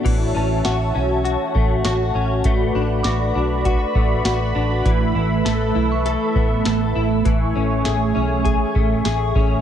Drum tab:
CC |x-------|--------|--------|--------|
HH |x-x-x-x-|x-x-x-x-|x-x-x-x-|x-x-x-x-|
TB |--x---x-|--x---x-|--x---x-|--x---x-|
SD |--o---o-|--o---o-|--o---o-|--o---o-|
BD |o----o--|o---oo--|o----o--|o---oo-o|